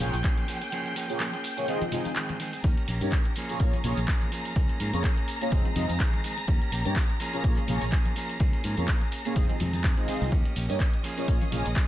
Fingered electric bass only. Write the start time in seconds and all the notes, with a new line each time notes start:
0.00 A#1
0.14 A#1
2.64 D#2
2.88 A#1
3.01 G2
3.60 A#2
3.84 A#1
3.97 A#1
4.56 C#2
4.80 G#2
4.94 F2
5.52 F1
5.76 F2
5.89 F2
6.48 D#2
6.72 A#1
6.86 G2
7.44 A#2
7.68 A#1
7.82 A#1
8.40 C#2
8.64 G#2
8.78 F2
9.36 F1
9.50 muted fingered electric bass stroke
9.60 F2
10.08 muted fingered electric bass stroke
10.21 C2
10.32 D#2
10.56 A#1
10.70 G2
11.28 A#2
11.52 A#1
11.66 A#1